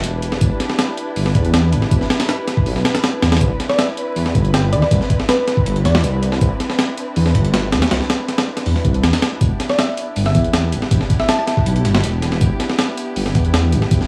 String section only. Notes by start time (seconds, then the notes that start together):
Already playing: D4 E4 G4 B4
3.41 C4 D4
9.41 B3 E4 G4